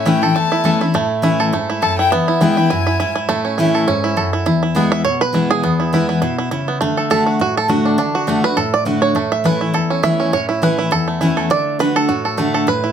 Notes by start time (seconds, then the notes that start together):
Already playing: A2 A3 C#4
0.05 E3 A3 C#4 E4 G5
0.22 C#4 E4 A4
0.35 E2 A3 A5
0.52 E4
0.64 E3 A3 C#4 E4 A4
0.81 C#4 E4
0.94 A2 A3
1.22 E3 A3 C#4 E4
1.40 A4
1.53 G#2 A3
1.70 E4
1.81 F#2 A4 A5
1.98 E4 G5
2.11 E2 B3 E5
2.28 E4
2.41 E3 G#3 B3 E4 G5
2.57 B3 E4
2.70 F#2 E4 G#5
2.87 E4
3.00 G#2 E4
3.15 E4
3.29 A2 A3
3.45 C#4
3.58 E3 A3 C#4 E4
3.75 A4
3.88 G#2 C#4
4.04 E4
4.17 F#2 A4
4.33 E4
4.46 E2 E4
4.63 E4
4.75 E3 G#3 B3 E4
4.92 E5
5.05 B2 C#5
5.21 B4
5.33 E3 G#3 B3 E4
5.51 G#4
5.63 E2 B3
5.80 E4
5.93 E3 G#3 B3 E4
6.09 E4
6.22 B2 E4
6.38 E4
6.51 C#3 E4
6.68 B3
6.81 D3 A3
6.97 A4
7.10 D3 A3 D4 F#4 A4
7.26 F#4
7.39 A2 F#4
7.57 A4
7.68 D3 A3 D4 F#4
7.85 D4
7.98 D3 D4
8.15 F#4
8.27 D3 A3 D4 F#4
8.44 D4 F#4 B4
8.57 A2 A4
8.74 D5
8.85 D3 A3 D4 F#4
9.02 C#5
9.15 A2 A3
9.32 E5
9.44 E3 A3 C#4 E4 B4
9.61 E4
9.74 E2 A4
9.90 C#4
10.03 E3 A3 C#4 E4 E5
10.20 C#4
10.33 A2 C#5
10.49 E4
10.62 E3 A3 C#4 E4 B4
10.78 E4
10.91 E2 A4
11.08 A3
11.21 E3 A3 C#4 E4
11.37 A4
11.50 D3 D5
11.79 D3 A3 D4 F#4 B4
11.96 A4
12.09 A2 F#4
12.25 A4
12.37 D3 A3 D4 F#4
12.54 A4
12.67 A2 B4
12.84 E4